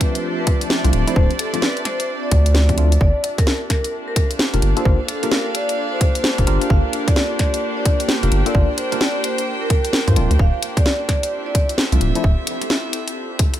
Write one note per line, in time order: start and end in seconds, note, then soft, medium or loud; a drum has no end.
0.00 0.81 F3 medium
0.00 0.81 A3 medium
0.00 0.81 C4 medium
0.00 2.97 C4 medium
0.00 0.81 D4 medium
0.00 2.99 D4 medium
0.00 0.81 F4 loud
0.00 2.97 F4 medium
0.00 3.01 G4 medium
0.00 0.22 B4 loud
0.00 3.01 C5 medium
0.00 3.67 D5 medium
0.00 2.97 E5 medium
0.00 2.97 A5 medium
0.00 kick medium
0.00 closed hi-hat loud
0.15 closed hi-hat medium
0.39 0.58 B4 loud
0.47 kick medium
0.47 closed hi-hat loud
0.61 closed hi-hat medium
0.70 snare loud
0.84 0.91 C2 medium
0.84 1.04 F3 medium
0.84 1.04 A3 medium
0.84 1.04 C4 medium
0.84 1.04 D4 medium
0.84 1.04 F4 medium
0.84 closed hi-hat medium
0.93 1.05 D1 loud
0.93 closed hi-hat medium
1.07 1.14 F3 medium
1.07 1.14 A3 medium
1.07 1.14 C4 medium
1.07 1.14 D4 medium
1.07 1.14 E4 medium
1.07 1.27 C5 loud
1.07 closed hi-hat medium
1.16 1.28 D1 loud
1.16 1.30 F3 medium
1.16 1.30 A3 medium
1.16 1.30 C4 medium
1.16 1.30 D4 medium
1.16 1.30 F4 medium
1.16 kick loud
1.31 closed hi-hat soft
1.39 1.55 A4 medium
1.39 closed hi-hat loud
1.54 1.62 F3 medium
1.54 1.62 A3 medium
1.54 1.62 C4 medium
1.54 1.62 D4 medium
1.54 1.62 F4 medium
1.54 snare soft
1.54 closed hi-hat medium
1.62 1.78 B4 medium
1.62 snare loud
1.77 closed hi-hat soft
1.85 2.07 C5 loud
1.85 snare medium
1.85 closed hi-hat loud
2.00 closed hi-hat medium
2.23 2.94 D5 medium
2.31 2.98 D2 medium
2.31 kick medium
2.31 closed hi-hat loud
2.46 closed hi-hat medium
2.55 snare loud
2.69 2.76 F3 medium
2.69 2.76 A3 medium
2.69 2.76 C4 medium
2.69 2.76 D4 medium
2.69 2.76 G4 medium
2.69 kick medium
2.69 closed hi-hat medium
2.78 2.92 F3 medium
2.78 2.92 A3 medium
2.78 2.92 C4 medium
2.78 2.92 D4 medium
2.78 2.92 F4 medium
2.78 closed hi-hat medium
2.92 closed hi-hat medium
3.01 3.12 G1 loud
3.01 10.12 A#3 medium
3.01 13.60 D4 medium
3.01 10.12 D4 medium
3.01 13.60 F4 medium
3.01 6.67 A4 medium
3.01 3.22 D5 loud
3.01 kick loud
3.24 closed hi-hat loud
3.31 13.60 G4 medium
3.38 3.58 A#4 medium
3.38 kick loud
3.38 snare soft
3.38 closed hi-hat medium
3.47 snare loud
3.70 3.91 A#4 loud
3.70 kick medium
3.70 snare medium
3.70 closed hi-hat loud
3.84 closed hi-hat medium
3.95 13.60 C5 medium
4.08 4.27 A#4 loud
4.16 8.02 F5 medium
4.16 kick loud
4.16 closed hi-hat loud
4.31 closed hi-hat medium
4.39 snare loud
4.54 4.61 F1 medium
4.54 4.73 A#3 medium
4.54 4.73 D4 medium
4.54 4.73 F4 medium
4.54 4.73 G4 medium
4.54 4.73 A#4 medium
4.54 closed hi-hat medium
4.62 4.74 G1 medium
4.62 closed hi-hat medium
4.77 4.83 A#3 medium
4.77 4.83 D4 medium
4.77 4.83 F4 medium
4.77 4.83 G4 medium
4.77 4.83 A4 medium
4.77 4.97 C5 loud
4.77 closed hi-hat medium
4.85 4.97 G1 loud
4.85 4.99 A#3 medium
4.85 4.99 D4 medium
4.85 4.99 F4 medium
4.85 4.99 G4 medium
4.85 4.99 A#4 medium
4.85 kick loud
5.08 5.25 A4 medium
5.08 closed hi-hat loud
5.23 5.31 A#3 medium
5.23 5.31 D4 medium
5.23 5.31 F4 medium
5.23 5.31 G4 medium
5.23 5.31 A#4 medium
5.23 snare soft
5.23 closed hi-hat medium
5.32 5.48 A#4 medium
5.32 snare loud
5.55 5.76 D5 loud
5.55 closed hi-hat loud
5.69 closed hi-hat medium
5.92 6.63 C5 loud
6.01 kick loud
6.01 closed hi-hat loud
6.15 closed hi-hat medium
6.24 snare loud
6.38 6.45 F1 medium
6.38 6.46 A#3 medium
6.38 6.46 D4 medium
6.38 6.46 F4 medium
6.38 6.46 G4 medium
6.38 6.46 A#4 medium
6.38 kick medium
6.38 closed hi-hat medium
6.47 6.58 G1 loud
6.47 8.20 A#3 medium
6.47 8.20 D4 medium
6.47 8.20 F4 medium
6.47 8.20 G4 medium
6.47 8.20 A#4 loud
6.47 closed hi-hat medium
6.61 closed hi-hat medium
6.70 6.82 G1 loud
6.70 10.13 A#4 medium
6.70 6.91 F5 loud
6.70 kick loud
6.93 closed hi-hat loud
7.08 7.27 D5 loud
7.08 kick loud
7.08 snare soft
7.08 closed hi-hat medium
7.16 snare loud
7.39 7.60 D5 loud
7.39 kick medium
7.39 snare medium
7.39 closed hi-hat medium
7.54 closed hi-hat medium
7.77 7.97 D5 loud
7.86 11.62 G5 medium
7.86 kick loud
7.86 closed hi-hat loud
8.00 closed hi-hat medium
8.09 snare loud
8.23 8.30 F1 medium
8.23 8.43 A#3 medium
8.23 8.43 D4 medium
8.23 8.43 F4 medium
8.23 8.43 G4 medium
8.23 8.43 A#4 medium
8.23 closed hi-hat medium
8.32 8.43 G1 medium
8.32 closed hi-hat medium
8.46 8.53 A#3 medium
8.46 8.53 D4 medium
8.46 8.53 F4 medium
8.46 8.53 G4 medium
8.46 8.53 A4 loud
8.46 8.66 D5 loud
8.46 closed hi-hat medium
8.55 8.66 G1 loud
8.55 8.69 A#3 medium
8.55 8.69 D4 medium
8.55 8.69 F4 medium
8.55 8.69 G4 medium
8.55 8.69 A#4 medium
8.55 kick loud
8.78 8.94 C5 medium
8.78 closed hi-hat loud
8.92 9.01 A#3 medium
8.92 9.01 D4 medium
8.92 9.01 F4 medium
8.92 9.01 G4 medium
8.92 9.01 A#4 medium
8.92 snare soft
8.92 closed hi-hat medium
9.01 9.17 D5 medium
9.01 snare loud
9.24 9.45 C5 loud
9.24 closed hi-hat medium
9.38 closed hi-hat medium
9.61 10.32 A#4 medium
9.70 kick loud
9.70 closed hi-hat loud
9.85 closed hi-hat medium
9.93 snare loud
10.08 10.18 G2 medium
10.08 10.15 A#3 medium
10.08 10.15 D4 medium
10.08 10.15 F4 medium
10.08 10.15 G4 medium
10.08 10.15 C5 medium
10.08 kick medium
10.08 closed hi-hat medium
10.16 10.28 D1 medium
10.16 10.30 F3 medium
10.16 10.30 A3 medium
10.16 10.30 C4 medium
10.16 13.60 C4 medium
10.16 10.30 D4 medium
10.16 13.60 E4 medium
10.16 10.30 F4 medium
10.16 13.60 A4 medium
10.16 closed hi-hat medium
10.31 10.37 D2 medium
10.31 closed hi-hat medium
10.39 10.51 D1 loud
10.39 10.60 F5 loud
10.39 kick loud
10.63 closed hi-hat loud
10.77 10.97 D5 loud
10.77 kick loud
10.77 snare soft
10.77 closed hi-hat medium
10.86 snare loud
11.09 11.30 D5 loud
11.09 kick medium
11.09 snare medium
11.09 closed hi-hat loud
11.22 13.60 E5 medium
11.22 closed hi-hat medium
11.46 11.66 D5 loud
11.55 kick loud
11.55 closed hi-hat loud
11.69 closed hi-hat medium
11.78 snare loud
11.92 11.99 C2 medium
11.92 12.12 F3 medium
11.92 12.12 A3 medium
11.92 12.12 C4 medium
11.92 12.12 D4 medium
11.92 12.12 F4 medium
11.92 closed hi-hat medium
12.01 12.12 D1 loud
12.01 closed hi-hat medium
12.15 12.22 F3 medium
12.15 12.22 A3 medium
12.15 12.22 C4 medium
12.15 12.22 D4 medium
12.15 12.22 E4 medium
12.15 12.24 E5 loud
12.15 closed hi-hat medium
12.24 12.35 D1 loud
12.24 kick loud
12.47 closed hi-hat loud
12.62 snare soft
12.62 closed hi-hat medium
12.70 snare loud
12.93 closed hi-hat medium
13.08 closed hi-hat medium
13.39 kick loud
13.39 closed hi-hat loud
13.54 closed hi-hat medium